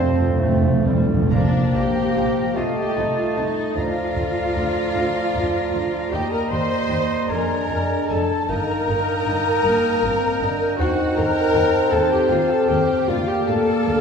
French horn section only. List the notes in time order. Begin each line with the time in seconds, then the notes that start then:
Already playing: F3 C4
1.32 A#3
2.57 A3
6.12 A#3
7.29 D4
8.49 D#4
8.88 D4
9.27 D#4
9.64 A#3
10.02 C4
10.40 D4
10.79 D#4
11.92 C4
13.09 A#3